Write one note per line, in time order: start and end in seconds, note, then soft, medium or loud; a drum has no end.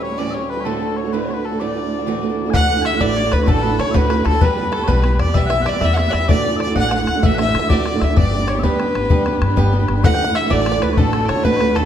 0.00 2.57 D2 medium
0.00 2.57 D3 medium
0.00 0.11 G3 soft
0.00 0.10 C#4 soft
0.00 0.20 C#5 medium
0.00 0.18 C#5 medium
0.10 0.17 G3 soft
0.10 0.18 C#4 soft
0.10 0.18 G4 soft
0.18 0.34 A2 medium
0.18 0.32 E3 medium
0.18 0.33 G3 medium
0.18 0.34 C#4 medium
0.18 0.35 G4 medium
0.18 0.35 D5 medium
0.18 0.30 D5 medium
0.30 0.41 E3 medium
0.30 0.42 G3 medium
0.30 0.50 C#5 medium
0.30 0.34 E5 medium
0.35 0.42 C#4 medium
0.35 0.40 G4 medium
0.41 0.59 G3 soft
0.41 0.57 C#4 soft
0.41 0.56 G4 medium
0.50 0.61 B4 medium
0.50 0.67 B4 medium
0.57 0.66 G3 soft
0.57 0.66 C#4 soft
0.57 0.65 G4 medium
0.57 0.65 C#5 medium
0.65 0.81 D2 medium
0.65 0.81 A2 medium
0.65 0.78 D3 medium
0.65 0.80 A3 medium
0.65 0.81 D4 medium
0.65 0.81 F#4 medium
0.65 0.97 A4 medium
0.65 0.99 A4 medium
0.79 0.88 D3 medium
0.79 0.89 A3 medium
0.79 0.88 D4 medium
0.79 0.87 F#4 medium
0.88 1.06 D3 soft
0.88 1.05 A3 soft
0.88 1.04 D4 soft
0.88 1.03 F#4 soft
0.97 1.13 C#5 medium
0.97 1.15 C#5 medium
1.04 1.12 D3 soft
1.04 1.12 A3 soft
1.04 1.13 D4 soft
1.04 1.12 F#4 medium
1.12 1.28 D2 medium
1.12 1.28 A2 medium
1.12 1.26 D3 medium
1.12 1.27 A3 medium
1.12 1.29 D4 medium
1.12 1.29 F#4 medium
1.12 1.31 B4 medium
1.12 1.25 B4 medium
1.23 1.36 D3 medium
1.23 1.35 C#5 medium
1.28 1.36 A3 soft
1.28 1.35 D4 medium
1.28 1.34 F#4 medium
1.28 1.34 C#5 medium
1.34 1.52 A3 soft
1.34 1.51 D4 soft
1.34 1.50 F#4 soft
1.34 1.46 B4 medium
1.34 1.45 B4 medium
1.38 1.53 D3 soft
1.45 1.62 A4 medium
1.45 1.60 A4 medium
1.51 1.60 D3 soft
1.51 1.60 A3 soft
1.51 1.60 D4 soft
1.51 1.59 F#4 medium
1.60 1.75 D2 medium
1.60 1.76 A2 medium
1.60 1.74 E3 medium
1.60 1.75 A3 medium
1.60 1.76 D4 medium
1.60 1.76 F#4 medium
1.60 2.50 D5 medium
1.60 2.23 D5 medium
1.75 1.83 E3 medium
1.75 1.84 A3 medium
1.75 1.83 D4 medium
1.75 1.82 F#4 medium
1.83 2.00 E3 soft
1.83 2.00 A3 soft
1.83 1.98 D4 soft
1.83 1.97 F#4 soft
1.98 2.06 E3 soft
1.98 2.06 A3 medium
1.98 2.07 D4 soft
1.98 2.06 F#4 medium
2.06 2.22 D2 medium
2.06 2.22 A2 medium
2.06 2.20 E3 medium
2.06 2.22 A3 medium
2.06 2.23 D4 loud
2.06 2.23 F#4 loud
2.21 2.30 E3 medium
2.21 2.30 A3 medium
2.21 2.29 D4 medium
2.21 2.28 F#4 medium
2.29 2.47 E3 soft
2.29 2.46 A3 soft
2.29 2.45 D4 medium
2.29 2.44 F#4 medium
2.45 2.53 E3 soft
2.45 2.54 A3 soft
2.45 2.54 D4 soft
2.45 2.53 F#4 medium
2.50 2.69 D2 medium
2.50 2.98 D2 loud
2.50 2.70 A2 medium
2.50 3.00 F#5 medium
2.50 2.82 F#5 medium
2.50 2.87 F#5 loud
2.50 2.54 G#5 medium
2.50 bodhran medium
2.54 2.68 E3 medium
2.54 2.69 A3 medium
2.54 2.70 D4 medium
2.54 2.70 F#4 medium
2.69 2.77 E3 medium
2.69 2.78 A3 medium
2.69 2.77 D4 medium
2.69 2.75 F#4 medium
2.77 2.94 E3 soft
2.77 2.93 A3 soft
2.77 2.92 D4 medium
2.77 2.91 F#4 medium
2.82 3.03 E5 loud
2.82 2.97 E5 medium
2.82 2.86 G#5 medium
2.82 bodhran medium
2.92 3.00 E3 soft
2.92 3.00 A3 soft
2.92 3.01 D4 medium
2.92 3.00 F#4 medium
2.97 3.30 A1 medium
2.97 3.16 D2 medium
2.97 3.16 A2 medium
2.97 3.14 E3 medium
2.97 3.15 D5 loud
2.97 3.33 D5 medium
2.97 3.01 F#5 medium
2.97 bodhran medium
3.01 3.15 A3 medium
3.01 3.16 D4 medium
3.01 3.17 F#4 medium
3.01 3.34 D5 loud
3.15 3.24 E3 medium
3.15 3.24 A3 medium
3.15 3.23 D4 medium
3.15 3.22 F#4 medium
3.15 3.32 C#5 medium
3.23 3.41 E3 soft
3.23 3.40 A3 medium
3.23 3.39 D4 medium
3.23 3.37 F#4 medium
3.32 3.47 D2 loud
3.32 3.47 B4 medium
3.32 3.44 B4 medium
3.32 3.50 B4 loud
3.32 bodhran medium
3.39 3.46 E3 soft
3.39 3.46 A3 soft
3.39 3.47 D4 medium
3.39 3.47 F#4 medium
3.44 3.77 A1 loud
3.44 3.63 D2 medium
3.44 3.63 A2 loud
3.44 3.60 E3 medium
3.44 3.61 A3 medium
3.44 3.63 A4 medium
3.44 3.47 C#5 medium
3.48 3.62 D4 medium
3.48 3.63 F#4 loud
3.48 3.80 A4 medium
3.48 3.82 A4 loud
3.48 bodhran medium
3.61 3.70 E3 medium
3.61 3.70 A3 medium
3.61 3.69 D4 medium
3.61 3.68 F#4 medium
3.61 3.80 B4 medium
3.69 3.87 E3 soft
3.69 3.86 A3 soft
3.69 3.85 D4 medium
3.69 3.84 F#4 medium
3.79 3.94 D3 medium
3.79 3.94 C#5 medium
3.79 3.91 C#5 medium
3.79 3.98 C#5 loud
3.79 bodhran medium
3.85 3.93 E3 soft
3.85 3.93 A3 medium
3.85 3.94 D4 medium
3.85 3.94 F#4 medium
3.91 4.09 D2 medium
3.91 4.24 D2 loud
3.91 4.10 A2 medium
3.91 4.07 E3 medium
3.91 4.08 A3 medium
3.91 4.09 D4 medium
3.91 4.09 B4 medium
3.91 4.26 B4 loud
3.91 3.95 E5 loud
3.91 bodhran loud
3.96 4.10 F#4 loud
3.96 4.27 B4 loud
4.08 4.17 E3 medium
4.08 4.17 A3 medium
4.08 4.16 D4 medium
4.08 4.15 F#4 medium
4.08 4.25 B4 medium
4.08 bodhran medium
4.16 4.34 E3 medium
4.16 4.33 A3 medium
4.16 4.32 D4 medium
4.16 4.31 F#4 medium
4.25 4.41 D2 medium
4.25 4.40 A4 medium
4.25 4.42 A4 medium
4.25 4.45 A4 loud
4.25 bodhran medium
4.32 4.39 E3 soft
4.32 4.41 A3 soft
4.32 4.41 D4 medium
4.32 4.41 F#4 medium
4.41 4.86 E2 loud
4.41 4.55 E3 medium
4.41 4.56 G3 medium
4.41 4.57 B3 medium
4.41 4.58 G4 loud
4.41 4.70 B4 medium
4.41 4.84 B4 loud
4.41 4.74 B4 loud
4.41 bodhran medium
4.56 4.64 E3 medium
4.56 4.65 G3 medium
4.56 4.64 B3 medium
4.56 4.62 G4 medium
4.63 4.81 G3 soft
4.63 4.80 B3 medium
4.63 4.78 G4 medium
4.72 4.87 A4 medium
4.72 4.91 A4 medium
4.72 bodhran medium
4.79 4.87 G3 medium
4.79 4.88 B3 medium
4.79 4.88 G4 medium
4.84 5.01 E3 medium
4.84 5.17 B4 medium
4.84 5.20 B4 medium
4.84 4.88 C#5 medium
4.88 5.18 B1 loud
4.88 5.02 G3 medium
4.88 5.03 B3 loud
4.88 5.04 G4 loud
4.88 5.20 B4 loud
4.88 bodhran medium
5.02 5.11 E3 medium
5.02 5.12 G3 medium
5.02 5.11 B3 medium
5.02 5.09 G4 medium
5.02 bodhran medium
5.10 5.28 G3 soft
5.10 5.27 B3 medium
5.10 5.26 G4 medium
5.19 5.34 E2 medium
5.19 5.34 D5 medium
5.19 5.39 D5 loud
5.19 bodhran medium
5.27 5.34 G3 soft
5.27 5.35 B3 medium
5.27 5.35 G4 medium
5.34 5.65 B1 medium
5.34 5.48 E3 medium
5.34 5.50 G3 loud
5.34 5.51 B3 medium
5.34 5.52 G4 medium
5.34 5.46 E5 medium
5.34 5.49 E5 medium
5.34 5.70 E5 loud
5.34 bodhran medium
5.46 5.58 E3 medium
5.46 5.65 E5 loud
5.46 5.62 E5 medium
5.46 5.50 F#5 medium
5.46 bodhran medium
5.51 5.59 G3 medium
5.51 5.58 B3 medium
5.51 5.57 G4 medium
5.58 5.75 G3 soft
5.58 5.74 B3 soft
5.58 5.72 G4 medium
5.62 5.81 D5 medium
5.62 5.66 F#5 medium
5.66 5.81 E3 loud
5.66 5.81 D5 medium
5.66 5.86 D5 loud
5.66 bodhran medium
5.73 5.81 G3 soft
5.73 5.82 B3 soft
5.73 5.82 G4 medium
5.81 6.12 E2 loud
5.81 5.95 E3 medium
5.81 5.97 G3 medium
5.81 5.98 B3 loud
5.81 5.99 G4 loud
5.81 5.94 E5 medium
5.81 5.95 E5 medium
5.81 5.95 E5 loud
5.81 bodhran medium
5.94 6.05 E3 medium
5.94 6.11 E5 medium
5.94 6.09 E5 medium
5.94 5.97 F#5 medium
5.94 6.01 F#5 medium
5.94 bodhran medium
5.98 6.06 G3 medium
5.98 6.05 B3 medium
5.98 6.03 G4 medium
5.98 6.12 E5 loud
6.04 6.22 G3 medium
6.04 6.21 B3 medium
6.04 6.19 G4 medium
6.09 6.16 D5 medium
6.09 6.27 E5 medium
6.09 6.13 F#5 medium
6.13 6.28 E2 medium
6.13 6.28 E5 medium
6.13 6.29 E5 loud
6.13 bodhran medium
6.20 6.29 G3 soft
6.20 6.29 B3 soft
6.20 6.29 G4 medium
6.28 6.44 D2 medium
6.28 6.73 D2 loud
6.28 6.45 A2 medium
6.28 6.42 E3 medium
6.28 6.43 A3 medium
6.28 6.45 D4 loud
6.28 6.46 F#4 medium
6.28 6.56 D5 medium
6.28 6.58 D5 medium
6.28 6.59 D5 loud
6.28 bodhran medium
6.44 6.52 E3 medium
6.44 6.52 A3 medium
6.44 6.51 D4 medium
6.44 6.50 F#4 medium
6.51 6.69 E3 soft
6.51 6.68 A3 medium
6.51 6.67 D4 medium
6.51 6.66 F#4 medium
6.56 6.75 D5 medium
6.56 6.76 D5 medium
6.56 6.60 E5 medium
6.56 bodhran medium
6.62 6.76 D5 loud
6.67 6.75 E3 medium
6.67 6.76 A3 medium
6.67 6.76 D4 medium
6.67 6.75 F#4 medium
6.75 7.06 A1 medium
6.75 6.91 D2 medium
6.75 6.92 A2 medium
6.75 6.90 E3 medium
6.75 6.91 A3 medium
6.75 6.92 D4 loud
6.75 6.92 F#4 loud
6.75 6.90 F#5 medium
6.75 6.89 F#5 medium
6.75 6.92 F#5 loud
6.75 bodhran medium
6.89 6.99 E3 medium
6.89 7.00 A3 medium
6.89 7.23 F#5 medium
6.89 6.93 G#5 loud
6.89 bodhran medium
6.93 6.99 D4 medium
6.93 6.98 F#4 medium
6.93 7.23 F#5 loud
6.93 7.27 F#5 loud
6.99 7.16 E3 medium
6.99 7.15 A3 medium
6.99 7.14 D4 soft
6.99 7.13 F#4 medium
7.07 7.22 D2 loud
7.07 bodhran medium
7.14 7.22 E3 soft
7.14 7.23 A3 medium
7.14 7.23 D4 medium
7.14 7.22 F#4 medium
7.23 7.53 A1 loud
7.23 7.38 D2 medium
7.23 7.39 A2 medium
7.23 7.37 E3 medium
7.23 7.38 A3 loud
7.23 7.39 D4 medium
7.23 7.39 F#4 medium
7.23 7.35 E5 medium
7.23 7.37 E5 medium
7.23 7.40 E5 loud
7.23 bodhran medium
7.35 7.46 E3 medium
7.35 7.69 E5 loud
7.35 7.48 E5 loud
7.35 7.38 F#5 loud
7.39 7.47 A3 medium
7.39 7.46 D4 medium
7.39 7.45 F#4 medium
7.39 7.74 E5 loud
7.39 bodhran medium
7.46 7.63 E3 soft
7.46 7.63 A3 soft
7.46 7.61 F#4 medium
7.46 7.58 E5 medium
7.55 7.69 D3 loud
7.55 bodhran medium
7.59 7.70 D4 medium
7.59 7.70 F#4 medium
7.59 7.69 E5 loud
7.64 7.69 E3 soft
7.64 7.69 A3 soft
7.69 7.85 D2 medium
7.69 8.00 D2 medium
7.69 7.86 A2 medium
7.69 7.84 E3 medium
7.69 7.85 A3 loud
7.69 7.86 D4 medium
7.69 7.86 F#4 loud
7.69 8.00 D5 medium
7.69 7.99 D5 medium
7.69 8.05 D5 loud
7.69 bodhran loud
7.85 7.93 E3 medium
7.85 7.93 A3 medium
7.85 7.92 D4 medium
7.85 7.91 F#4 medium
7.85 bodhran medium
7.92 8.10 E3 medium
7.92 8.09 A3 medium
7.92 8.08 D4 medium
7.92 8.07 F#4 medium
8.00 8.16 D2 medium
8.00 8.17 E5 medium
8.00 8.16 E5 medium
8.00 8.18 E5 loud
8.00 bodhran medium
8.08 8.16 E3 medium
8.08 8.17 A3 medium
8.08 8.17 D4 medium
8.08 8.16 F#4 medium
8.16 8.61 G1 medium
8.16 8.30 G3 medium
8.16 8.31 B3 medium
8.16 8.32 D4 medium
8.16 8.33 G4 loud
8.16 8.49 D5 medium
8.16 8.59 D5 medium
8.16 8.51 D5 loud
8.16 bodhran medium
8.31 8.40 G3 medium
8.31 8.40 B3 medium
8.31 8.40 D4 medium
8.31 8.38 G4 medium
8.39 8.57 B3 soft
8.39 8.56 D4 soft
8.39 8.54 G4 medium
8.47 8.63 C#5 medium
8.47 8.67 C#5 medium
8.47 bodhran medium
8.55 8.63 B3 medium
8.55 8.63 D4 medium
8.55 8.63 G4 medium
8.59 8.77 G3 medium
8.59 8.63 E5 medium
8.63 8.93 D2 medium
8.63 8.78 B3 medium
8.63 8.79 D4 medium
8.63 8.80 G4 loud
8.63 10.04 B4 medium
8.63 9.53 B4 medium
8.63 9.58 B4 medium
8.63 bodhran loud
8.78 8.86 G3 medium
8.78 8.87 B3 medium
8.78 8.86 D4 medium
8.78 8.85 G4 medium
8.78 bodhran medium
8.86 9.04 B3 soft
8.86 9.02 D4 soft
8.86 9.00 G4 medium
8.95 9.09 G1 medium
8.95 bodhran medium
9.01 9.09 B3 medium
9.01 9.10 D4 medium
9.01 9.10 G4 medium
9.10 9.40 D2 loud
9.10 9.23 G3 medium
9.10 9.25 B3 loud
9.10 9.26 D4 medium
9.10 9.27 G4 loud
9.10 bodhran medium
9.25 9.33 G3 medium
9.25 9.34 B3 medium
9.25 9.33 D4 medium
9.25 9.31 G4 medium
9.25 bodhran medium
9.32 9.50 B3 soft
9.32 9.49 D4 medium
9.32 9.47 G4 medium
9.42 9.56 G2 loud
9.42 bodhran medium
9.48 9.56 B3 soft
9.48 9.57 D4 medium
9.48 9.56 G4 medium
9.56 9.87 G1 loud
9.56 9.70 G3 loud
9.56 9.72 B3 loud
9.56 9.73 D4 loud
9.56 9.73 G4 loud
9.56 bodhran loud
9.71 9.80 G3 medium
9.71 9.81 B3 medium
9.71 9.80 D4 medium
9.71 9.78 G4 medium
9.79 9.97 B3 medium
9.79 9.96 D4 medium
9.79 9.94 G4 medium
9.88 10.03 G1 medium
9.88 bodhran medium
9.95 10.04 B3 soft
9.95 10.03 D4 medium
9.95 10.04 G4 medium
10.03 10.19 D2 medium
10.03 10.48 D2 loud
10.03 10.19 A2 medium
10.03 10.17 E3 loud
10.03 10.19 A3 medium
10.03 10.20 D4 loud
10.03 10.20 F#4 loud
10.03 10.14 F#5 loud
10.03 10.13 F#5 loud
10.03 10.37 F#5 loud
10.03 bodhran medium
10.14 10.23 F#5 medium
10.14 10.25 G5 medium
10.19 10.27 E3 medium
10.19 10.27 A3 medium
10.19 10.26 D4 medium
10.19 10.25 F#4 medium
10.24 10.43 D4 medium
10.24 10.42 F#4 medium
10.24 10.34 F#5 loud
10.24 10.35 F#5 medium
10.29 10.44 E3 soft
10.29 10.44 A3 soft
10.35 10.51 E5 medium
10.35 10.49 E5 medium
10.35 10.52 E5 loud
10.35 bodhran medium
10.43 10.51 E3 medium
10.43 10.51 A3 medium
10.43 10.51 D4 medium
10.43 10.51 F#4 medium
10.50 10.80 A1 medium
10.50 10.66 D2 medium
10.50 10.67 A2 medium
10.50 10.65 E3 loud
10.50 10.65 A3 medium
10.50 10.67 D4 medium
10.50 10.68 F#4 medium
10.50 10.60 D5 loud
10.50 10.84 D5 loud
10.50 10.83 D5 medium
10.50 bodhran loud
10.61 10.71 D5 medium
10.66 10.74 E3 medium
10.66 10.74 A3 medium
10.66 10.74 D4 medium
10.66 10.72 F#4 medium
10.66 bodhran medium
10.72 10.90 A3 soft
10.72 10.89 D4 medium
10.72 10.88 F#4 medium
10.72 10.81 D5 medium
10.77 10.91 E3 soft
10.82 10.97 D2 loud
10.82 10.96 B4 medium
10.82 10.99 B4 medium
10.82 10.93 B4 medium
10.82 bodhran medium
10.89 10.97 E3 soft
10.89 10.98 A3 medium
10.89 10.98 D4 medium
10.89 10.97 F#4 medium
10.93 10.98 C#5 medium
10.93 bodhran medium
10.97 11.27 A1 loud
10.97 11.13 D2 medium
10.97 11.13 A2 medium
10.97 11.11 E3 medium
10.97 11.12 A3 loud
10.97 11.13 D4 medium
10.97 11.14 F#4 medium
10.97 11.23 A4 medium
10.97 11.44 A4 medium
10.97 11.30 A4 loud
11.12 11.21 E3 medium
11.12 11.21 A3 medium
11.12 11.20 D4 medium
11.12 11.19 F#4 medium
11.12 bodhran medium
11.20 11.38 E3 soft
11.20 11.37 A3 soft
11.20 11.35 D4 soft
11.20 11.34 F#4 medium
11.25 11.45 C#5 loud
11.25 11.44 C#5 medium
11.25 11.29 D5 medium
11.25 bodhran medium
11.29 11.44 D3 loud
11.35 11.44 E3 soft
11.35 11.44 A3 medium
11.35 11.44 D4 soft
11.35 11.44 F#4 medium
11.44 11.60 D2 medium
11.44 11.74 D2 loud
11.44 11.60 A2 medium
11.44 11.58 E3 medium
11.44 11.60 A3 medium
11.44 11.61 D4 loud
11.44 11.61 F#4 loud
11.44 11.77 B4 loud
11.44 11.57 B4 medium
11.44 11.77 B4 medium
11.44 bodhran medium
11.57 11.68 E3 medium
11.57 11.76 B4 medium
11.57 11.60 C#5 medium
11.57 bodhran medium
11.61 11.68 A3 medium
11.61 11.67 D4 medium
11.61 11.66 F#4 medium
11.67 11.85 E3 medium
11.67 11.84 A3 medium
11.67 11.83 D4 medium
11.67 11.82 F#4 medium
11.75 11.85 D#2 medium
11.75 11.85 A4 loud
11.75 11.85 A4 medium
11.75 bodhran medium